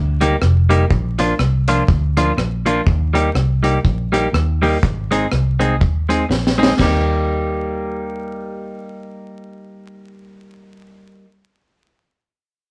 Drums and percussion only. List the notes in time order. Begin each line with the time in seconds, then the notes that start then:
0.21 closed hi-hat
0.42 cross-stick
0.70 closed hi-hat
0.90 kick
1.19 closed hi-hat
1.39 cross-stick
1.68 closed hi-hat
1.88 kick
2.17 closed hi-hat
2.38 cross-stick
2.66 closed hi-hat
2.87 kick
3.15 closed hi-hat
3.35 cross-stick
3.64 closed hi-hat
3.85 kick
4.14 closed hi-hat
4.34 cross-stick
4.63 open hi-hat
4.83 kick, hi-hat pedal
5.12 closed hi-hat
5.32 cross-stick
5.61 closed hi-hat
5.81 kick
6.10 closed hi-hat
6.31 snare
6.47 snare
6.63 snare
6.79 kick, snare, china